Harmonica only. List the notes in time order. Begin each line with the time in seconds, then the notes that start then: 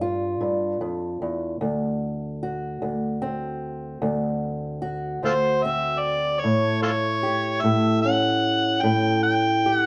5.25 F4 A4 C5
5.63 E5
5.99 D5
6.40 C#5
6.83 F4 A4 C#5
7.62 E5
8.02 F#5
8.82 G5
9.23 G5
9.76 F#5